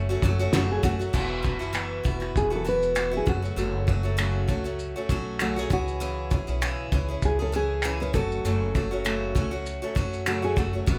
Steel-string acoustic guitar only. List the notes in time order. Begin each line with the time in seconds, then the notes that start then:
0.09 F#3 A3 C#4 F#4
0.23 F#3 A3 C#4 F#4
0.39 F#3 A3 C#4 F#4
0.53 F#2 C#3 F#3 A3 C#4 F#4
0.83 F#3 A3 C#4 F#4
0.99 F#3 A3 C#4 F#4
1.13 E3 B3 E4 F#4
1.42 E3 B3 E4 F#4
1.59 B3 E4 F#4
1.73 E3 B3 E4 F#4
2.03 E3 B3 E4 F#4
2.20 B3 E4 F#4
2.50 B3 E4 F#4
2.65 E3 B3 E4 F#4
2.95 E3 B3 E4 F#4
3.11 B3 E4 F#4
3.26 F#3 A3 C#4 F#4
3.42 F#3 A3 C#4 F#4
3.56 F#2 C#3 F#3 A3 C#4 F#4
3.87 F#3 A3 C#4 F#4
4.03 F#3 A3 C#4 F#4
4.17 F#2 C#3 F#3 A3 C#4 F#4
4.48 F#3 A3 C#4 F#4
4.64 F#3 A3 C#4 F#4
4.96 F#3 A3 C#4 F#4
5.09 F#3 A3 C#4 F#4
5.40 F#2 C#3 F#3 A3 C#4 F#4
5.56 F#3 A3 C#4 F#4
5.70 E3 C#4 E4 G#4
6.00 C#3 E3 C#4 E4 G#4
6.31 E3 C#4 E4 G#4
6.47 C#4 E4 G#4
6.62 C#3 E3 C#4 E4 G#4
6.92 E3 C#4 E4 G#4
7.08 C#4 E4 G#4
7.39 C#4 E4 G#4
7.52 E3 C#4 E4 G#4
7.84 C#3 E3 C#4 E4 G#4
8.00 C#4 E4 G#4
8.13 F#3 A3 C#4 F#4
8.45 F#2 C#3 F#3 A3 C#4 F#4
8.75 F#3 A3 C#4 F#4
8.91 F#3 A3 C#4 F#4
9.05 F#2 C#3 F#3 A3 C#4 F#4
9.35 F#3 A3 C#4 F#4
9.51 F#3 A3 C#4 F#4
9.82 F#3 A3 C#4 F#4
9.95 F#3 A3 C#4 F#4
10.26 F#2 C#3 F#3 A3 C#4 F#4
10.42 F#3 A3 C#4 F#4
10.56 F#3 A3 C#4 F#4
10.73 F#3 A3 C#4 F#4
10.86 E3 B3 E4 F#4